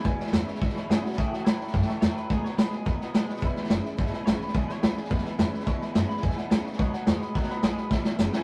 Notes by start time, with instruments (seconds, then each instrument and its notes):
0.03 upright bass E1, steel-string acoustic guitar E2 B2 E3 G#3 B3 E4, clean electric guitar E2 B2 G#5, honky-tonk piano E5 G#5 B5, kick, snare
0.16 steel-string acoustic guitar E3 G#3 B3 E4, honky-tonk piano E5 B5, snare
0.26 snare
0.32 upright bass E2, clean electric guitar E2 C#3 E5, steel-string acoustic guitar G#3, honky-tonk piano E5 G#5 B5, snare, hi-hat pedal
0.47 steel-string acoustic guitar E3 G#3 B3 E4, clean electric guitar C#5, honky-tonk piano E5 G#5 B5, muted upright bass stroke, snare
0.55 snare
0.61 steel-string acoustic guitar E2 B2 E3 G#3 B3 E4, clean electric guitar E2 B2 E5, upright bass G#2, honky-tonk piano E5 G#5 B5, kick, snare
0.69 snare
0.76 steel-string acoustic guitar E3 G#3 B3 E4, clean electric guitar C#5, honky-tonk piano E5 G#5 B5, snare
0.89 clean electric guitar E2 C#3 G#4, upright bass B2, steel-string acoustic guitar E3 G#3 B3, honky-tonk piano E5 G#5 B5, snare, hi-hat pedal
1.03 steel-string acoustic guitar E3 G#3 B3 E4, clean electric guitar F#4, honky-tonk piano E5 G#5 B5, snare
1.13 snare
1.17 steel-string acoustic guitar A2 E3 A3 C#4 E4, upright bass A2, clean electric guitar A2 E3 G#4, honky-tonk piano E5 A5 C#6, kick, snare
1.30 steel-string acoustic guitar C#4 E4, clean electric guitar F#4, honky-tonk piano E5 A5 D#6, muted upright bass stroke, snare
1.35 steel-string acoustic guitar A3
1.45 upright bass G#2, clean electric guitar A2 F#3 E4, steel-string acoustic guitar E3 A3, honky-tonk piano E5 A5 C#6, snare, hi-hat pedal
1.49 steel-string acoustic guitar E4
1.60 steel-string acoustic guitar A3 C#4 E4, honky-tonk piano E5 A5 C#6, muted upright bass stroke, snare
1.67 snare
1.74 upright bass F#2, steel-string acoustic guitar A2 E3 A3 C#4 E4, clean electric guitar A2 E3, honky-tonk piano E5 A5 C#6, kick, snare
1.81 snare
1.88 steel-string acoustic guitar A3 C#4 E4, honky-tonk piano E5 A5 C#6, muted upright bass stroke, snare
2.01 upright bass E2, clean electric guitar A2 F#3 C#5, steel-string acoustic guitar E3 A3 E4, honky-tonk piano E5 A5 E6, snare, hi-hat pedal
2.15 steel-string acoustic guitar A3 C#4 E4, clean electric guitar B4, honky-tonk piano E5 A5 C#6, snare
2.30 upright bass B1, steel-string acoustic guitar B2 D#3 A3 B3 F#4, clean electric guitar B2 F#3 G#4, honky-tonk piano D#5 F#5 B5, kick, snare
2.44 steel-string acoustic guitar A3 B3 F#4, clean electric guitar C#5, honky-tonk piano D#5 F#5 B5, muted upright bass stroke, snare
2.57 upright bass C#2, clean electric guitar B2 G#3 B4, steel-string acoustic guitar A3 B3 F#4, honky-tonk piano D#5 F#5 B5, snare, hi-hat pedal
2.71 steel-string acoustic guitar A3 B3 F#4, clean electric guitar G#4, honky-tonk piano D#5 F#5 B5, snare
2.85 upright bass D#2, steel-string acoustic guitar B2 D#3 A3 B3 F#4, clean electric guitar B2 F#3 B4, honky-tonk piano D#5 F#5 B5, kick, snare
2.99 steel-string acoustic guitar A3 B3 F#4, honky-tonk piano D#5 F#5 B5, snare
3.14 upright bass B1, clean electric guitar B2 G#3, steel-string acoustic guitar D#3 A3 B3 F#4, honky-tonk piano D#5 F#5 G#5, snare, hi-hat pedal
3.28 steel-string acoustic guitar A3 B3 F#4, honky-tonk piano D#5 F#5 B5, muted upright bass stroke, snare
3.36 snare
3.40 upright bass E1, steel-string acoustic guitar E2 B2 E3 G#3 B3 E4, clean electric guitar E2 B2, kick, snare
3.44 honky-tonk piano E5 G#5 B5
3.54 steel-string acoustic guitar E3 G#3 B3 E4, honky-tonk piano E5 B5, snare
3.58 honky-tonk piano G#5
3.63 snare
3.68 upright bass F#1, clean electric guitar E2 C#3, steel-string acoustic guitar E3 G#3 B3 E4, honky-tonk piano E5 G#5 B5, snare, hi-hat pedal
3.82 steel-string acoustic guitar E3 G#3 B3 E4, honky-tonk piano E5 G#5 B5, muted upright bass stroke, snare
3.97 upright bass G#1, steel-string acoustic guitar E2 B2 E3 G#3 B3 E4, clean electric guitar E2 B2, honky-tonk piano E5 G#5 B5, kick, snare
4.06 snare
4.10 steel-string acoustic guitar E3 G#3 B3 E4, honky-tonk piano E5 G#5 B5, muted upright bass stroke, snare
4.25 upright bass A1, clean electric guitar E2 C#3 C#5, steel-string acoustic guitar E3 G#3 B3 E4, honky-tonk piano E5 G#5 B5, snare, hi-hat pedal
4.40 steel-string acoustic guitar E3 G#3 B3 E4, clean electric guitar B4, honky-tonk piano E5 G#5 C#6, muted upright bass stroke, snare
4.47 snare
4.54 upright bass B1, steel-string acoustic guitar E2 B2 E3 G#3 B3 E4, clean electric guitar E2 B2 G#4, honky-tonk piano E5 G#5 B5, kick, snare
4.68 steel-string acoustic guitar E3 G#3 B3 E4, clean electric guitar C#5, honky-tonk piano E5 G#5 B5, muted upright bass stroke, snare
4.82 upright bass C#2, clean electric guitar E2 C#3 B4, steel-string acoustic guitar E3 G#3 B3 E4, honky-tonk piano E5 G#5 C#6, snare, hi-hat pedal
4.96 steel-string acoustic guitar E3 G#3 B3 E4, clean electric guitar G#4, honky-tonk piano E5 G#5 B5, muted upright bass stroke, snare
5.04 snare
5.10 upright bass D#2, steel-string acoustic guitar E2 B2 E3 G#3 B3 E4, clean electric guitar E2 B2 B4, honky-tonk piano E5 G#5 B5, kick, snare
5.18 snare
5.23 steel-string acoustic guitar E3 G#3 B3 E4, honky-tonk piano E5 G#5 B5, muted upright bass stroke, snare
5.37 upright bass E2, clean electric guitar E2 C#3, steel-string acoustic guitar E3 G#3 B3 E4, honky-tonk piano E5 G#5 C#6, snare, hi-hat pedal
5.52 steel-string acoustic guitar E3 G#3 B3 E4, honky-tonk piano E5 G#5 B5, snare
5.60 snare
5.66 steel-string acoustic guitar E2 B2 E3 G#3 B3 E4, clean electric guitar E2 B2, upright bass G#2, honky-tonk piano E5 G#5 C#6, kick, snare
5.81 steel-string acoustic guitar E3 G#3 B3 E4, honky-tonk piano E5 G#5 B5, muted upright bass stroke, snare
5.94 clean electric guitar E2 C#3, upright bass F#2, steel-string acoustic guitar E3 G#3 B3, honky-tonk piano E5 G#5 B5, snare, hi-hat pedal
6.08 steel-string acoustic guitar E3 G#3 B3 E4, honky-tonk piano E5 G#5 B5, clean electric guitar B5, snare
6.16 snare
6.22 upright bass E2, clean electric guitar E2 B2 G#5, steel-string acoustic guitar E2 B2 E3 G#3 B3 E4, honky-tonk piano E5 G#5 B5, kick, snare
6.30 snare
6.35 steel-string acoustic guitar B3 E4, honky-tonk piano E5 G#5 B5, clean electric guitar F#5, snare
6.39 steel-string acoustic guitar E3 G#3
6.50 upright bass C#2, clean electric guitar E2 C#3 G#5, steel-string acoustic guitar E3 G#3 B3 E4, honky-tonk piano E5 G#5 B5, snare, hi-hat pedal
6.64 steel-string acoustic guitar E3 G#3 B3 E4, honky-tonk piano E5 G#5 C#6, clean electric guitar F#5, muted upright bass stroke, snare
6.73 snare
6.78 upright bass B1, steel-string acoustic guitar B2 D#3 A3 B3 F#4, clean electric guitar B2 F#3 C#5, honky-tonk piano D#5 F#5 B5, kick, snare
6.92 steel-string acoustic guitar A3 B3 F#4, honky-tonk piano D#5 F#5 G#5, clean electric guitar F#5, snare
7.06 upright bass D#2, clean electric guitar B2 G#3 C#5, steel-string acoustic guitar D#3 A3 B3 F#4, honky-tonk piano D#5 F#5 G#5, snare, hi-hat pedal
7.20 steel-string acoustic guitar A3 B3 F#4, clean electric guitar B4, honky-tonk piano D#5 F#5 B5, muted upright bass stroke, snare
7.34 upright bass C#2, clean electric guitar B2 F#3 C#5, steel-string acoustic guitar B2 D#3 A3 B3 F#4, honky-tonk piano D#5 F#5 B5, kick, snare
7.43 snare
7.49 steel-string acoustic guitar A3 B3 F#4, clean electric guitar B4, honky-tonk piano D#5 F#5 B5, muted upright bass stroke, snare
7.62 upright bass B1, clean electric guitar B2 G#3 G#4, steel-string acoustic guitar D#3 A3 B3 F#4, honky-tonk piano D#5 F#5 B5, snare, hi-hat pedal
7.76 steel-string acoustic guitar A3 B3 F#4, clean electric guitar B4, honky-tonk piano D#5 F#5 B5, snare
7.90 upright bass E1, steel-string acoustic guitar E2 B2 E3 G#3 B3 E4, clean electric guitar E2 B2 E5, honky-tonk piano E5 G#5 B5, kick, snare
8.04 steel-string acoustic guitar E3 G#3 B3 E4, honky-tonk piano E5 G#5 C#6, muted upright bass stroke, snare
8.18 upright bass F#1, clean electric guitar E2 C#3, steel-string acoustic guitar E3 G#3 B3 E4, honky-tonk piano E5 G#5 B5, snare, hi-hat pedal
8.32 steel-string acoustic guitar E3 G#3 B3 E4, honky-tonk piano E5 G#5 B5, muted upright bass stroke, snare
8.37 clean electric guitar G#5